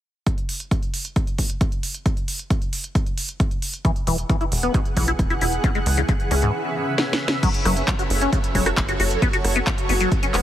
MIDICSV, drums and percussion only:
0, 0, Header, 1, 2, 480
1, 0, Start_track
1, 0, Key_signature, 3, "minor"
1, 0, Tempo, 447761
1, 285, Time_signature, 4, 2, 24, 8
1, 11170, End_track
2, 0, Start_track
2, 0, Title_t, "Drums"
2, 284, Note_on_c, 9, 36, 114
2, 284, Note_on_c, 9, 42, 51
2, 391, Note_off_c, 9, 36, 0
2, 392, Note_off_c, 9, 42, 0
2, 405, Note_on_c, 9, 42, 26
2, 512, Note_off_c, 9, 42, 0
2, 525, Note_on_c, 9, 46, 100
2, 632, Note_off_c, 9, 46, 0
2, 645, Note_on_c, 9, 42, 52
2, 752, Note_off_c, 9, 42, 0
2, 764, Note_on_c, 9, 36, 109
2, 765, Note_on_c, 9, 42, 53
2, 872, Note_off_c, 9, 36, 0
2, 872, Note_off_c, 9, 42, 0
2, 885, Note_on_c, 9, 42, 26
2, 992, Note_off_c, 9, 42, 0
2, 1004, Note_on_c, 9, 46, 103
2, 1111, Note_off_c, 9, 46, 0
2, 1125, Note_on_c, 9, 42, 54
2, 1232, Note_off_c, 9, 42, 0
2, 1244, Note_on_c, 9, 42, 52
2, 1245, Note_on_c, 9, 36, 114
2, 1351, Note_off_c, 9, 42, 0
2, 1352, Note_off_c, 9, 36, 0
2, 1365, Note_on_c, 9, 42, 27
2, 1472, Note_off_c, 9, 42, 0
2, 1484, Note_on_c, 9, 46, 101
2, 1485, Note_on_c, 9, 36, 60
2, 1592, Note_off_c, 9, 36, 0
2, 1592, Note_off_c, 9, 46, 0
2, 1605, Note_on_c, 9, 42, 53
2, 1712, Note_off_c, 9, 42, 0
2, 1724, Note_on_c, 9, 42, 54
2, 1725, Note_on_c, 9, 36, 119
2, 1831, Note_off_c, 9, 42, 0
2, 1832, Note_off_c, 9, 36, 0
2, 1844, Note_on_c, 9, 42, 26
2, 1952, Note_off_c, 9, 42, 0
2, 1964, Note_on_c, 9, 46, 101
2, 2072, Note_off_c, 9, 46, 0
2, 2085, Note_on_c, 9, 42, 54
2, 2192, Note_off_c, 9, 42, 0
2, 2205, Note_on_c, 9, 36, 120
2, 2205, Note_on_c, 9, 42, 52
2, 2312, Note_off_c, 9, 36, 0
2, 2312, Note_off_c, 9, 42, 0
2, 2326, Note_on_c, 9, 42, 26
2, 2433, Note_off_c, 9, 42, 0
2, 2445, Note_on_c, 9, 46, 107
2, 2552, Note_off_c, 9, 46, 0
2, 2565, Note_on_c, 9, 42, 52
2, 2673, Note_off_c, 9, 42, 0
2, 2685, Note_on_c, 9, 36, 117
2, 2686, Note_on_c, 9, 42, 52
2, 2792, Note_off_c, 9, 36, 0
2, 2793, Note_off_c, 9, 42, 0
2, 2805, Note_on_c, 9, 42, 25
2, 2912, Note_off_c, 9, 42, 0
2, 2925, Note_on_c, 9, 46, 109
2, 3032, Note_off_c, 9, 46, 0
2, 3045, Note_on_c, 9, 42, 53
2, 3152, Note_off_c, 9, 42, 0
2, 3164, Note_on_c, 9, 36, 118
2, 3165, Note_on_c, 9, 42, 53
2, 3272, Note_off_c, 9, 36, 0
2, 3272, Note_off_c, 9, 42, 0
2, 3285, Note_on_c, 9, 42, 27
2, 3392, Note_off_c, 9, 42, 0
2, 3404, Note_on_c, 9, 46, 109
2, 3511, Note_off_c, 9, 46, 0
2, 3524, Note_on_c, 9, 42, 49
2, 3632, Note_off_c, 9, 42, 0
2, 3644, Note_on_c, 9, 36, 121
2, 3645, Note_on_c, 9, 42, 52
2, 3751, Note_off_c, 9, 36, 0
2, 3752, Note_off_c, 9, 42, 0
2, 3765, Note_on_c, 9, 42, 26
2, 3872, Note_off_c, 9, 42, 0
2, 3884, Note_on_c, 9, 46, 105
2, 3991, Note_off_c, 9, 46, 0
2, 4004, Note_on_c, 9, 42, 51
2, 4111, Note_off_c, 9, 42, 0
2, 4124, Note_on_c, 9, 36, 119
2, 4124, Note_on_c, 9, 42, 50
2, 4231, Note_off_c, 9, 36, 0
2, 4231, Note_off_c, 9, 42, 0
2, 4244, Note_on_c, 9, 42, 25
2, 4352, Note_off_c, 9, 42, 0
2, 4364, Note_on_c, 9, 46, 107
2, 4472, Note_off_c, 9, 46, 0
2, 4485, Note_on_c, 9, 42, 52
2, 4592, Note_off_c, 9, 42, 0
2, 4604, Note_on_c, 9, 36, 119
2, 4605, Note_on_c, 9, 42, 51
2, 4711, Note_off_c, 9, 36, 0
2, 4712, Note_off_c, 9, 42, 0
2, 4725, Note_on_c, 9, 42, 24
2, 4832, Note_off_c, 9, 42, 0
2, 4844, Note_on_c, 9, 46, 110
2, 4951, Note_off_c, 9, 46, 0
2, 4964, Note_on_c, 9, 42, 50
2, 5071, Note_off_c, 9, 42, 0
2, 5083, Note_on_c, 9, 42, 52
2, 5084, Note_on_c, 9, 36, 119
2, 5191, Note_off_c, 9, 36, 0
2, 5191, Note_off_c, 9, 42, 0
2, 5204, Note_on_c, 9, 42, 25
2, 5311, Note_off_c, 9, 42, 0
2, 5324, Note_on_c, 9, 36, 64
2, 5324, Note_on_c, 9, 46, 109
2, 5431, Note_off_c, 9, 36, 0
2, 5431, Note_off_c, 9, 46, 0
2, 5444, Note_on_c, 9, 42, 50
2, 5551, Note_off_c, 9, 42, 0
2, 5564, Note_on_c, 9, 36, 126
2, 5564, Note_on_c, 9, 42, 50
2, 5671, Note_off_c, 9, 36, 0
2, 5672, Note_off_c, 9, 42, 0
2, 5684, Note_on_c, 9, 42, 25
2, 5792, Note_off_c, 9, 42, 0
2, 5804, Note_on_c, 9, 46, 104
2, 5911, Note_off_c, 9, 46, 0
2, 5924, Note_on_c, 9, 42, 49
2, 6031, Note_off_c, 9, 42, 0
2, 6044, Note_on_c, 9, 36, 121
2, 6044, Note_on_c, 9, 42, 49
2, 6151, Note_off_c, 9, 36, 0
2, 6151, Note_off_c, 9, 42, 0
2, 6164, Note_on_c, 9, 42, 24
2, 6271, Note_off_c, 9, 42, 0
2, 6283, Note_on_c, 9, 46, 105
2, 6391, Note_off_c, 9, 46, 0
2, 6404, Note_on_c, 9, 42, 50
2, 6511, Note_off_c, 9, 42, 0
2, 6524, Note_on_c, 9, 42, 50
2, 6525, Note_on_c, 9, 36, 118
2, 6631, Note_off_c, 9, 42, 0
2, 6632, Note_off_c, 9, 36, 0
2, 6644, Note_on_c, 9, 42, 24
2, 6751, Note_off_c, 9, 42, 0
2, 6764, Note_on_c, 9, 46, 108
2, 6871, Note_off_c, 9, 46, 0
2, 6884, Note_on_c, 9, 42, 49
2, 6991, Note_off_c, 9, 42, 0
2, 7484, Note_on_c, 9, 38, 67
2, 7591, Note_off_c, 9, 38, 0
2, 7644, Note_on_c, 9, 38, 78
2, 7751, Note_off_c, 9, 38, 0
2, 7804, Note_on_c, 9, 38, 94
2, 7912, Note_off_c, 9, 38, 0
2, 7965, Note_on_c, 9, 36, 120
2, 7965, Note_on_c, 9, 42, 67
2, 7965, Note_on_c, 9, 49, 96
2, 8072, Note_off_c, 9, 36, 0
2, 8072, Note_off_c, 9, 42, 0
2, 8072, Note_off_c, 9, 49, 0
2, 8085, Note_on_c, 9, 42, 67
2, 8192, Note_off_c, 9, 42, 0
2, 8206, Note_on_c, 9, 37, 57
2, 8206, Note_on_c, 9, 46, 105
2, 8313, Note_off_c, 9, 37, 0
2, 8313, Note_off_c, 9, 46, 0
2, 8326, Note_on_c, 9, 42, 66
2, 8433, Note_off_c, 9, 42, 0
2, 8445, Note_on_c, 9, 36, 117
2, 8446, Note_on_c, 9, 39, 120
2, 8446, Note_on_c, 9, 42, 68
2, 8552, Note_off_c, 9, 36, 0
2, 8553, Note_off_c, 9, 39, 0
2, 8553, Note_off_c, 9, 42, 0
2, 8566, Note_on_c, 9, 42, 67
2, 8673, Note_off_c, 9, 42, 0
2, 8686, Note_on_c, 9, 46, 109
2, 8793, Note_off_c, 9, 46, 0
2, 8806, Note_on_c, 9, 42, 70
2, 8913, Note_off_c, 9, 42, 0
2, 8925, Note_on_c, 9, 36, 114
2, 8926, Note_on_c, 9, 42, 67
2, 9032, Note_off_c, 9, 36, 0
2, 9033, Note_off_c, 9, 42, 0
2, 9046, Note_on_c, 9, 42, 70
2, 9153, Note_off_c, 9, 42, 0
2, 9165, Note_on_c, 9, 36, 61
2, 9165, Note_on_c, 9, 46, 107
2, 9272, Note_off_c, 9, 36, 0
2, 9272, Note_off_c, 9, 46, 0
2, 9286, Note_on_c, 9, 37, 75
2, 9286, Note_on_c, 9, 42, 68
2, 9393, Note_off_c, 9, 37, 0
2, 9393, Note_off_c, 9, 42, 0
2, 9405, Note_on_c, 9, 36, 119
2, 9405, Note_on_c, 9, 39, 125
2, 9405, Note_on_c, 9, 42, 67
2, 9512, Note_off_c, 9, 36, 0
2, 9512, Note_off_c, 9, 39, 0
2, 9512, Note_off_c, 9, 42, 0
2, 9525, Note_on_c, 9, 42, 66
2, 9632, Note_off_c, 9, 42, 0
2, 9645, Note_on_c, 9, 46, 104
2, 9752, Note_off_c, 9, 46, 0
2, 9765, Note_on_c, 9, 42, 66
2, 9873, Note_off_c, 9, 42, 0
2, 9885, Note_on_c, 9, 36, 123
2, 9885, Note_on_c, 9, 42, 67
2, 9992, Note_off_c, 9, 36, 0
2, 9992, Note_off_c, 9, 42, 0
2, 10005, Note_on_c, 9, 42, 67
2, 10112, Note_off_c, 9, 42, 0
2, 10125, Note_on_c, 9, 37, 58
2, 10125, Note_on_c, 9, 46, 107
2, 10232, Note_off_c, 9, 37, 0
2, 10232, Note_off_c, 9, 46, 0
2, 10245, Note_on_c, 9, 42, 64
2, 10353, Note_off_c, 9, 42, 0
2, 10365, Note_on_c, 9, 36, 123
2, 10365, Note_on_c, 9, 39, 124
2, 10365, Note_on_c, 9, 42, 65
2, 10472, Note_off_c, 9, 36, 0
2, 10472, Note_off_c, 9, 39, 0
2, 10472, Note_off_c, 9, 42, 0
2, 10485, Note_on_c, 9, 42, 66
2, 10592, Note_off_c, 9, 42, 0
2, 10604, Note_on_c, 9, 46, 108
2, 10712, Note_off_c, 9, 46, 0
2, 10725, Note_on_c, 9, 42, 67
2, 10832, Note_off_c, 9, 42, 0
2, 10845, Note_on_c, 9, 36, 117
2, 10845, Note_on_c, 9, 42, 70
2, 10952, Note_off_c, 9, 36, 0
2, 10952, Note_off_c, 9, 42, 0
2, 10965, Note_on_c, 9, 42, 68
2, 11072, Note_off_c, 9, 42, 0
2, 11085, Note_on_c, 9, 37, 59
2, 11085, Note_on_c, 9, 39, 62
2, 11085, Note_on_c, 9, 46, 110
2, 11170, Note_off_c, 9, 37, 0
2, 11170, Note_off_c, 9, 39, 0
2, 11170, Note_off_c, 9, 46, 0
2, 11170, End_track
0, 0, End_of_file